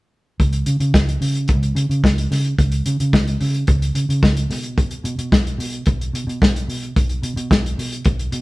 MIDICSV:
0, 0, Header, 1, 3, 480
1, 0, Start_track
1, 0, Tempo, 546448
1, 352, Time_signature, 4, 2, 24, 8
1, 7391, End_track
2, 0, Start_track
2, 0, Title_t, "Fingered electric bass"
2, 0, Program_c, 0, 33
2, 352, Note_on_c, 0, 37, 97
2, 541, Note_off_c, 0, 37, 0
2, 584, Note_on_c, 0, 49, 84
2, 682, Note_off_c, 0, 49, 0
2, 703, Note_on_c, 0, 49, 81
2, 801, Note_off_c, 0, 49, 0
2, 826, Note_on_c, 0, 37, 75
2, 1018, Note_off_c, 0, 37, 0
2, 1062, Note_on_c, 0, 49, 87
2, 1309, Note_on_c, 0, 37, 94
2, 1322, Note_off_c, 0, 49, 0
2, 1500, Note_off_c, 0, 37, 0
2, 1539, Note_on_c, 0, 49, 88
2, 1639, Note_off_c, 0, 49, 0
2, 1664, Note_on_c, 0, 49, 81
2, 1762, Note_off_c, 0, 49, 0
2, 1791, Note_on_c, 0, 37, 92
2, 1981, Note_off_c, 0, 37, 0
2, 2029, Note_on_c, 0, 49, 78
2, 2220, Note_off_c, 0, 49, 0
2, 2270, Note_on_c, 0, 37, 93
2, 2461, Note_off_c, 0, 37, 0
2, 2511, Note_on_c, 0, 49, 96
2, 2606, Note_off_c, 0, 49, 0
2, 2637, Note_on_c, 0, 49, 79
2, 2755, Note_on_c, 0, 37, 101
2, 2768, Note_off_c, 0, 49, 0
2, 2944, Note_off_c, 0, 37, 0
2, 2993, Note_on_c, 0, 49, 97
2, 3183, Note_off_c, 0, 49, 0
2, 3233, Note_on_c, 0, 37, 111
2, 3423, Note_off_c, 0, 37, 0
2, 3466, Note_on_c, 0, 49, 81
2, 3564, Note_off_c, 0, 49, 0
2, 3592, Note_on_c, 0, 49, 78
2, 3687, Note_off_c, 0, 49, 0
2, 3718, Note_on_c, 0, 37, 102
2, 3906, Note_off_c, 0, 37, 0
2, 3950, Note_on_c, 0, 47, 86
2, 4330, Note_off_c, 0, 47, 0
2, 4429, Note_on_c, 0, 47, 94
2, 4526, Note_off_c, 0, 47, 0
2, 4553, Note_on_c, 0, 47, 81
2, 4648, Note_off_c, 0, 47, 0
2, 4672, Note_on_c, 0, 35, 102
2, 4862, Note_off_c, 0, 35, 0
2, 4905, Note_on_c, 0, 47, 96
2, 5098, Note_off_c, 0, 47, 0
2, 5158, Note_on_c, 0, 35, 108
2, 5346, Note_off_c, 0, 35, 0
2, 5389, Note_on_c, 0, 47, 93
2, 5485, Note_off_c, 0, 47, 0
2, 5508, Note_on_c, 0, 47, 81
2, 5605, Note_off_c, 0, 47, 0
2, 5637, Note_on_c, 0, 35, 98
2, 5825, Note_off_c, 0, 35, 0
2, 5866, Note_on_c, 0, 47, 80
2, 6058, Note_off_c, 0, 47, 0
2, 6116, Note_on_c, 0, 35, 100
2, 6304, Note_off_c, 0, 35, 0
2, 6348, Note_on_c, 0, 47, 101
2, 6445, Note_off_c, 0, 47, 0
2, 6468, Note_on_c, 0, 47, 94
2, 6565, Note_off_c, 0, 47, 0
2, 6598, Note_on_c, 0, 35, 91
2, 6786, Note_off_c, 0, 35, 0
2, 6835, Note_on_c, 0, 47, 92
2, 7024, Note_off_c, 0, 47, 0
2, 7080, Note_on_c, 0, 35, 101
2, 7266, Note_off_c, 0, 35, 0
2, 7311, Note_on_c, 0, 47, 96
2, 7391, Note_off_c, 0, 47, 0
2, 7391, End_track
3, 0, Start_track
3, 0, Title_t, "Drums"
3, 349, Note_on_c, 9, 36, 91
3, 352, Note_on_c, 9, 42, 55
3, 436, Note_off_c, 9, 36, 0
3, 439, Note_off_c, 9, 42, 0
3, 462, Note_on_c, 9, 42, 45
3, 550, Note_off_c, 9, 42, 0
3, 581, Note_on_c, 9, 42, 62
3, 669, Note_off_c, 9, 42, 0
3, 707, Note_on_c, 9, 42, 47
3, 794, Note_off_c, 9, 42, 0
3, 826, Note_on_c, 9, 36, 110
3, 828, Note_on_c, 9, 38, 113
3, 914, Note_off_c, 9, 36, 0
3, 915, Note_off_c, 9, 38, 0
3, 955, Note_on_c, 9, 42, 39
3, 1043, Note_off_c, 9, 42, 0
3, 1070, Note_on_c, 9, 46, 64
3, 1157, Note_off_c, 9, 46, 0
3, 1190, Note_on_c, 9, 42, 40
3, 1278, Note_off_c, 9, 42, 0
3, 1298, Note_on_c, 9, 42, 62
3, 1308, Note_on_c, 9, 36, 90
3, 1386, Note_off_c, 9, 42, 0
3, 1396, Note_off_c, 9, 36, 0
3, 1430, Note_on_c, 9, 42, 42
3, 1518, Note_off_c, 9, 42, 0
3, 1549, Note_on_c, 9, 42, 73
3, 1637, Note_off_c, 9, 42, 0
3, 1678, Note_on_c, 9, 42, 40
3, 1766, Note_off_c, 9, 42, 0
3, 1789, Note_on_c, 9, 36, 98
3, 1798, Note_on_c, 9, 38, 104
3, 1877, Note_off_c, 9, 36, 0
3, 1886, Note_off_c, 9, 38, 0
3, 1916, Note_on_c, 9, 42, 48
3, 2003, Note_off_c, 9, 42, 0
3, 2035, Note_on_c, 9, 38, 30
3, 2036, Note_on_c, 9, 46, 67
3, 2123, Note_off_c, 9, 38, 0
3, 2124, Note_off_c, 9, 46, 0
3, 2149, Note_on_c, 9, 42, 36
3, 2237, Note_off_c, 9, 42, 0
3, 2271, Note_on_c, 9, 36, 84
3, 2271, Note_on_c, 9, 42, 64
3, 2359, Note_off_c, 9, 36, 0
3, 2359, Note_off_c, 9, 42, 0
3, 2386, Note_on_c, 9, 42, 45
3, 2474, Note_off_c, 9, 42, 0
3, 2510, Note_on_c, 9, 42, 61
3, 2597, Note_off_c, 9, 42, 0
3, 2636, Note_on_c, 9, 42, 54
3, 2724, Note_off_c, 9, 42, 0
3, 2751, Note_on_c, 9, 36, 96
3, 2759, Note_on_c, 9, 38, 114
3, 2839, Note_off_c, 9, 36, 0
3, 2847, Note_off_c, 9, 38, 0
3, 2877, Note_on_c, 9, 42, 38
3, 2964, Note_off_c, 9, 42, 0
3, 2992, Note_on_c, 9, 46, 71
3, 3080, Note_off_c, 9, 46, 0
3, 3115, Note_on_c, 9, 42, 41
3, 3202, Note_off_c, 9, 42, 0
3, 3226, Note_on_c, 9, 42, 67
3, 3232, Note_on_c, 9, 36, 104
3, 3314, Note_off_c, 9, 42, 0
3, 3320, Note_off_c, 9, 36, 0
3, 3358, Note_on_c, 9, 42, 46
3, 3446, Note_off_c, 9, 42, 0
3, 3472, Note_on_c, 9, 42, 78
3, 3560, Note_off_c, 9, 42, 0
3, 3602, Note_on_c, 9, 42, 46
3, 3690, Note_off_c, 9, 42, 0
3, 3713, Note_on_c, 9, 36, 116
3, 3723, Note_on_c, 9, 38, 98
3, 3801, Note_off_c, 9, 36, 0
3, 3811, Note_off_c, 9, 38, 0
3, 3836, Note_on_c, 9, 42, 46
3, 3924, Note_off_c, 9, 42, 0
3, 3957, Note_on_c, 9, 38, 31
3, 3958, Note_on_c, 9, 46, 65
3, 4045, Note_off_c, 9, 38, 0
3, 4046, Note_off_c, 9, 46, 0
3, 4070, Note_on_c, 9, 42, 46
3, 4157, Note_off_c, 9, 42, 0
3, 4196, Note_on_c, 9, 36, 92
3, 4200, Note_on_c, 9, 42, 61
3, 4283, Note_off_c, 9, 36, 0
3, 4287, Note_off_c, 9, 42, 0
3, 4311, Note_on_c, 9, 42, 42
3, 4399, Note_off_c, 9, 42, 0
3, 4436, Note_on_c, 9, 42, 67
3, 4524, Note_off_c, 9, 42, 0
3, 4557, Note_on_c, 9, 42, 52
3, 4644, Note_off_c, 9, 42, 0
3, 4675, Note_on_c, 9, 36, 115
3, 4679, Note_on_c, 9, 38, 113
3, 4763, Note_off_c, 9, 36, 0
3, 4767, Note_off_c, 9, 38, 0
3, 4804, Note_on_c, 9, 42, 37
3, 4891, Note_off_c, 9, 42, 0
3, 4920, Note_on_c, 9, 46, 67
3, 5008, Note_off_c, 9, 46, 0
3, 5032, Note_on_c, 9, 42, 42
3, 5120, Note_off_c, 9, 42, 0
3, 5144, Note_on_c, 9, 42, 67
3, 5154, Note_on_c, 9, 36, 94
3, 5232, Note_off_c, 9, 42, 0
3, 5242, Note_off_c, 9, 36, 0
3, 5283, Note_on_c, 9, 42, 42
3, 5370, Note_off_c, 9, 42, 0
3, 5403, Note_on_c, 9, 42, 76
3, 5490, Note_off_c, 9, 42, 0
3, 5528, Note_on_c, 9, 42, 42
3, 5616, Note_off_c, 9, 42, 0
3, 5637, Note_on_c, 9, 36, 100
3, 5647, Note_on_c, 9, 38, 107
3, 5725, Note_off_c, 9, 36, 0
3, 5735, Note_off_c, 9, 38, 0
3, 5763, Note_on_c, 9, 42, 43
3, 5851, Note_off_c, 9, 42, 0
3, 5881, Note_on_c, 9, 46, 63
3, 5969, Note_off_c, 9, 46, 0
3, 5996, Note_on_c, 9, 42, 42
3, 6084, Note_off_c, 9, 42, 0
3, 6117, Note_on_c, 9, 36, 87
3, 6119, Note_on_c, 9, 42, 66
3, 6205, Note_off_c, 9, 36, 0
3, 6206, Note_off_c, 9, 42, 0
3, 6232, Note_on_c, 9, 42, 46
3, 6319, Note_off_c, 9, 42, 0
3, 6354, Note_on_c, 9, 42, 60
3, 6442, Note_off_c, 9, 42, 0
3, 6477, Note_on_c, 9, 42, 49
3, 6565, Note_off_c, 9, 42, 0
3, 6595, Note_on_c, 9, 36, 100
3, 6601, Note_on_c, 9, 38, 119
3, 6683, Note_off_c, 9, 36, 0
3, 6689, Note_off_c, 9, 38, 0
3, 6730, Note_on_c, 9, 42, 42
3, 6818, Note_off_c, 9, 42, 0
3, 6844, Note_on_c, 9, 46, 69
3, 6932, Note_off_c, 9, 46, 0
3, 6960, Note_on_c, 9, 42, 44
3, 7048, Note_off_c, 9, 42, 0
3, 7067, Note_on_c, 9, 42, 65
3, 7076, Note_on_c, 9, 36, 104
3, 7155, Note_off_c, 9, 42, 0
3, 7164, Note_off_c, 9, 36, 0
3, 7198, Note_on_c, 9, 42, 43
3, 7286, Note_off_c, 9, 42, 0
3, 7312, Note_on_c, 9, 42, 78
3, 7391, Note_off_c, 9, 42, 0
3, 7391, End_track
0, 0, End_of_file